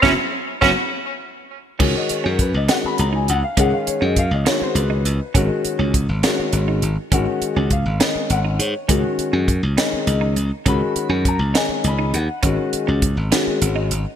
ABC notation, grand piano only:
X:1
M:6/8
L:1/16
Q:3/8=68
K:Abdor
V:1 name="Grand piano"
[G,CD]2 z2 [G,CD]2 z6 | z e d B c e g c' b a g f | g f d e f e d =c _c4 | z12 |
g4 f2 e2 g2 d2 | z12 | c'4 b2 a2 c'2 g2 | z12 |]
V:2 name="Grand piano"
z12 | [E,A,DG]4 z2 [E,A,DG]4 z2 | [E,A,DA]4 z2 [E,A,DG]4 z2 | [E,A,DG]4 z2 [E,A,DG]4 z2 |
[E,A,DG]4 z2 [E,A,DA]4 z2 | [E,A,DG]4 z2 [E,A,DE]4 z2 | [E,A,DG]4 z2 [E,A,DE]4 z2 | [E,A,DG]4 z2 [E,A,DG]4 z2 |]